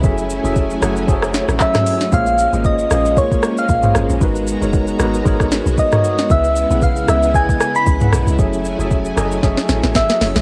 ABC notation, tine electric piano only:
X:1
M:4/4
L:1/16
Q:"Swing 16ths" 1/4=115
K:Gb
V:1 name="Tine electric piano"
[G,DA=A_f]2 z [G,D_A=Af]2 z [G,D_A=Ag]2 [G,D_A=A=cd]4 z [G,D_A=Af]2 z | [B,FA=cd]2 z [B,FAce]2 z [B,FAce]2 [B,FABd]4 z [B,FAcd]2 z | [A,EGBc]2 z [A,EGBd]2 z [A,EGBc]2 [A,EGBd]4 z [A,EGBd]2 z | [D,D_Fc_f]2 z [D,DFcg]2 z [D,DFce]2 [D,DFce]4 z [D,DFcg]2 z |
[G,DA=A_f]2 z [G,D_A=Af]2 z [G,D_A=Ae]2 [G,D_A=Af]4 z [G,D_A=Af]2 z |]